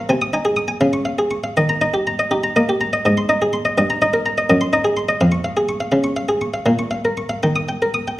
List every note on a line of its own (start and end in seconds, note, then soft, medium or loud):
0.09 0.32 C3 medium
0.09 0.22 G#5 medium
0.22 0.33 D#6 medium
0.33 0.58 D#4 medium
0.33 0.46 G#5 medium
0.45 0.57 G#4 medium
0.57 0.69 D#6 medium
0.68 0.80 G#5 medium
0.81 1.04 C#3 medium
0.81 0.94 F5 medium
0.93 1.06 C#6 medium
1.05 1.18 F5 medium
1.19 1.31 G#4 soft
1.31 1.44 C#6 soft
1.44 1.56 F5 soft
1.57 1.80 D#3 medium
1.57 1.69 D#5 medium
1.69 1.82 A#5 medium
1.81 2.07 D#4 soft
1.81 1.94 D#5 soft
1.94 2.06 G4 soft
2.07 2.19 A#5 soft
2.19 2.31 D#5 soft
2.31 2.56 D#4 soft
2.31 2.43 G4 soft
2.44 2.56 A#5 soft
2.56 2.81 A#3 soft
2.56 2.68 D#5 soft
2.69 2.81 G4 soft
2.81 2.93 A#5 soft
2.93 3.05 D#5 soft
3.05 3.28 G#2 medium
3.05 3.18 D#5 medium
3.17 3.30 C6 medium
3.29 3.55 D#4 soft
3.29 3.42 D#5 medium
3.42 3.54 G#4 soft
3.53 3.66 C6 medium
3.65 3.77 D#5 medium
3.78 4.01 G2 medium
3.78 3.90 D#5 medium
3.90 4.02 A#5 medium
4.02 4.27 D#4 soft
4.02 4.14 D#5 medium
4.14 4.26 A#4 medium
4.26 4.38 A#5 medium
4.38 4.48 D#5 medium
4.50 4.73 F#2 medium
4.50 4.62 D#5 medium
4.61 4.74 C6 medium
4.73 4.98 D#4 medium
4.73 4.86 D#5 medium
4.85 4.98 G#4 medium
4.97 5.10 C6 medium
5.09 5.21 D#5 medium
5.21 5.44 F2 medium
5.21 5.34 F5 medium
5.32 5.45 C#6 medium
5.44 5.57 F5 medium
5.57 5.70 G#4 medium
5.69 5.82 C#6 medium
5.80 5.91 F5 medium
5.92 6.16 C#3 medium
5.92 6.05 F5 medium
6.04 6.17 C#6 medium
6.17 6.30 F5 medium
6.29 6.42 G#4 medium
6.41 6.55 C#6 medium
6.54 6.65 F5 medium
6.66 6.90 A#2 medium
6.66 6.80 F5 medium
6.79 6.92 C#6 medium
6.91 7.04 F5 medium
7.05 7.18 A#4 soft
7.17 7.30 C#6 medium
7.29 7.42 F5 soft
7.43 7.67 D#3 medium
7.43 7.56 G5 medium
7.56 7.69 D#6 medium
7.69 7.81 G5 soft
7.82 7.95 A#4 soft
7.94 8.07 D#6 soft
8.08 8.20 G5 soft